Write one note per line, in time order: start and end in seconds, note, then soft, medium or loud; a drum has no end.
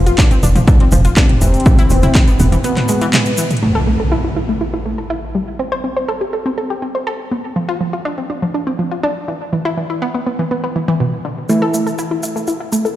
0.00 0.11 F1 medium
0.00 0.15 F4 medium
0.06 0.14 F4 medium
0.06 closed hi-hat soft
0.06 shaker soft
0.18 0.22 D4 loud
0.18 kick loud
0.18 clap loud
0.18 closed hi-hat medium
0.18 mid tom loud
0.18 shaker medium
0.31 0.36 C4 medium
0.31 closed hi-hat soft
0.31 shaker soft
0.43 0.60 F1 medium
0.43 0.46 D4 medium
0.43 open hi-hat medium
0.43 shaker medium
0.56 0.59 F3 medium
0.56 closed hi-hat soft
0.56 mid tom loud
0.56 shaker soft
0.68 0.76 D4 medium
0.68 kick loud
0.68 closed hi-hat medium
0.68 shaker soft
0.80 0.88 C4 medium
0.80 closed hi-hat soft
0.91 1.09 F1 loud
0.91 1.00 F3 medium
0.91 mid tom medium
0.91 open hi-hat loud
0.91 shaker medium
1.05 1.13 F4 medium
1.05 closed hi-hat soft
1.05 shaker soft
1.17 2.55 C4 loud
1.17 1.20 D4 loud
1.17 kick loud
1.17 clap loud
1.17 closed hi-hat medium
1.17 shaker medium
1.29 closed hi-hat soft
1.29 mid tom loud
1.41 1.59 F1 medium
1.41 1.45 E3 medium
1.41 open hi-hat medium
1.41 shaker medium
1.54 closed hi-hat soft
1.54 shaker soft
1.60 closed hi-hat medium
1.66 1.74 E3 medium
1.66 kick loud
1.66 closed hi-hat medium
1.66 mid tom medium
1.66 shaker medium
1.78 1.84 E4 loud
1.78 closed hi-hat soft
1.78 shaker soft
1.90 2.08 E1 loud
1.90 1.99 E3 medium
1.90 open hi-hat medium
1.90 shaker medium
2.03 2.11 E4 medium
2.03 closed hi-hat soft
2.03 mid tom medium
2.03 shaker soft
2.15 2.18 B3 loud
2.15 kick loud
2.15 clap loud
2.15 closed hi-hat medium
2.15 shaker soft
2.28 2.33 B3 medium
2.28 closed hi-hat soft
2.28 shaker soft
2.40 2.57 E1 medium
2.40 2.43 B3 medium
2.40 mid tom medium
2.40 open hi-hat medium
2.40 shaker medium
2.52 2.55 E3 medium
2.52 closed hi-hat soft
2.52 shaker soft
2.64 2.72 B3 medium
2.64 3.53 B3 loud
2.64 closed hi-hat medium
2.64 shaker soft
2.77 2.85 B3 medium
2.77 clap soft
2.77 closed hi-hat soft
2.77 mid tom medium
2.88 2.94 G#3 medium
2.88 open hi-hat loud
2.88 shaker medium
3.01 3.07 E3 loud
3.01 closed hi-hat soft
3.01 shaker soft
3.13 3.17 G#3 medium
3.13 clap loud
3.13 closed hi-hat medium
3.13 mid tom medium
3.13 shaker soft
3.26 closed hi-hat soft
3.26 shaker soft
3.37 3.44 E3 medium
3.37 open hi-hat medium
3.37 shaker loud
3.50 closed hi-hat soft
3.50 mid tom medium
3.50 shaker soft
3.57 closed hi-hat medium
3.63 3.71 A3 medium
3.63 impact medium
3.75 3.80 A4 loud
3.87 3.95 A3 medium
4.00 4.08 A4 medium
4.12 4.15 E4 loud
4.24 4.30 E4 medium
4.36 4.40 E4 medium
4.49 4.52 A3 medium
4.61 4.69 E4 medium
4.74 4.81 E4 medium
4.86 4.94 A3 medium
4.98 5.06 A4 medium
5.10 5.13 E4 loud
5.35 5.38 G3 medium
5.59 5.68 C4 medium
5.72 5.77 C5 loud
5.84 5.92 C4 medium
5.97 6.04 C5 medium
6.08 6.12 A4 medium
6.21 6.26 G4 medium
6.33 6.36 A4 medium
6.46 6.49 C4 medium
6.58 6.66 A4 medium
6.70 6.78 G4 medium
6.82 6.91 C4 medium
6.95 7.03 C5 medium
7.07 7.10 A4 loud
7.31 7.35 B3 medium
7.56 7.64 F3 medium
7.69 7.74 F4 loud
7.81 7.89 F3 medium
7.93 8.01 F4 medium
8.05 8.08 D4 loud
8.18 8.23 C4 medium
8.30 8.33 D4 medium
8.42 8.46 F3 medium
8.54 8.63 D4 medium
8.67 8.75 C4 medium
8.79 8.87 F3 medium
8.91 8.99 F4 medium
9.03 9.07 D4 loud
9.28 9.31 E3 medium
9.53 9.61 E3 medium
9.65 9.71 E4 loud
9.77 9.86 E3 medium
9.90 9.98 E4 medium
10.02 10.05 B3 loud
10.14 10.20 B3 medium
10.27 10.30 B3 medium
10.39 10.42 E3 medium
10.51 10.59 B3 medium
10.64 10.72 B3 medium
10.76 10.79 E3 medium
10.88 10.93 E3 loud
11.00 11.06 B2 medium
11.25 11.30 D3 medium
11.49 11.95 E3 loud
11.49 11.58 A3 medium
11.49 11.95 E4 loud
11.49 shaker soft
11.62 11.67 A4 loud
11.74 11.82 A3 medium
11.74 shaker medium
11.87 11.94 A4 medium
11.87 shaker soft
11.98 12.02 E4 loud
11.98 shaker soft
12.11 12.16 E4 medium
12.23 12.27 E4 medium
12.23 shaker medium
12.36 12.39 A3 medium
12.36 shaker soft
12.47 12.56 E4 medium
12.47 shaker medium
12.60 12.68 E4 medium
12.72 12.81 A3 medium
12.72 shaker medium
12.85 12.93 A4 medium
12.85 shaker soft